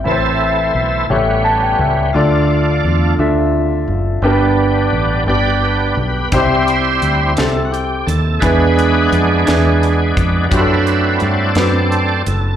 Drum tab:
HH |------|------|------|xxxxxx|
SD |------|------|------|---o--|
BD |------|------|------|o-----|

HH |xxxxxx|xxxxxx|
SD |---o--|---o--|
BD |o----o|o-----|